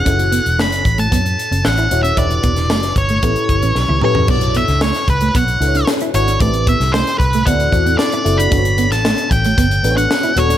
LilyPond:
<<
  \new Staff \with { instrumentName = "Lead electric guitar" } { \time 4/4 \key b \minor \tempo 4 = 114 fis''4 b''8. a''4~ a''16 fis''8. e''16 | d''4. cis''2 cis''8 | d''8 e''8 cis''8 b'8 fis''4 r8 cis''8 | d''8 e''8 c''8 b'8 fis''4 d''8. b''16~ |
b''8. a''8. g''4~ g''16 fis''8. cis''8 | }
  \new Staff \with { instrumentName = "FM electric piano" } { \time 4/4 \key b \minor <cis' e' fis' a' cis''>4. r2 <cis' e' fis' a' cis''>8 | <d' e' fis' g' b'>4. r8 <cis' e' g' a' b'>4~ <cis' e' g' a' b'>16 r16 <cis' e' g' a' b'>8 | <d' e' fis' a' cis''>4. r4 <d' e' fis' a' b' cis''>4 <d' e' fis' a' cis''>8 | <c' e' g' a' b'>4. r8 <c' e' fis' a' d''>8 <c' e' fis' a' d''>4 <c' e' fis' a' d''>8 |
<b d' fis' a' b' cis''>4. r4 <b d' fis' a' b' cis''>4 <b d' fis' a' cis''>8 | }
  \new Staff \with { instrumentName = "Clean electric guitar" } { \time 4/4 \key b \minor cis'16 r16 b16 r16 a16 r8 a16 b16 r8 cis'16 r16 e'16 r16 cis'16 | e'16 r16 b16 r16 a16 r8 a16 b16 r8 cis'16 r16 e'16 r16 cis'16 | b16 r16 b16 r16 a16 r8 a16 b16 r8 d'16 r16 e'16 r16 d'16 | a16 r16 b16 r16 a16 r8 a16 b16 r8 c'16 r16 e'16 r16 d'16 |
d'16 r16 b16 r16 a16 r8 a16 b16 r8 d'16 r16 e'16 r16 d'16 | }
  \new Staff \with { instrumentName = "Fingered electric bass" } { \clef bass \time 4/4 \key b \minor fis,,8. e,,16 fis,,8 a,,8 fis,8 r16 fis,,16 a,,8 ees,,8 | e,,8 e,,8 fis,,8 g,,8 a,,16 r16 g,,16 a,,16 b,,16 cis,16 r16 e,16 | b,,8. cis,8 r16 cis,8 b,,8 cis,8 r8 gis,,8 | a,,8. c,8 r16 c,8 d,8 e,8 r8 fis,,8 |
g,,8. a,,8 r16 a,,8 g,,8 a,,8 r8 ees,,8 | }
  \new DrumStaff \with { instrumentName = "Drums" } \drummode { \time 4/4 <hh bd>16 hh16 hh16 hh16 sn16 <hh sn>16 <hh bd>16 hh16 <hh bd>16 hh16 hh16 hh16 sn16 hh16 hh16 hh16 | <hh bd>16 hh16 <hh bd>16 <hh sn>16 sn16 <hh sn>16 <hh bd>16 hh16 <hh bd>16 hh16 <hh bd>16 hh16 sn16 tommh16 toml16 tomfh16 | <cymc bd>16 hh16 hh16 <hh sn>16 sn16 <hh sn>16 <hh bd>16 hh16 <hh bd>16 hh16 hh16 hh16 sn16 hh16 hh16 hh16 | <hh bd>16 hh16 <hh bd>16 <hh sn>16 sn16 <hh sn>16 <hh bd>16 hh16 <hh bd>16 hh16 <hh bd>16 hh16 sn16 hh16 hh16 hh16 |
<hh bd>16 hh16 hh16 <hh sn>16 sn16 hh16 <hh bd>16 hh16 <hh bd>16 hh16 hh16 hh16 sn16 hh16 hh16 hh16 | }
>>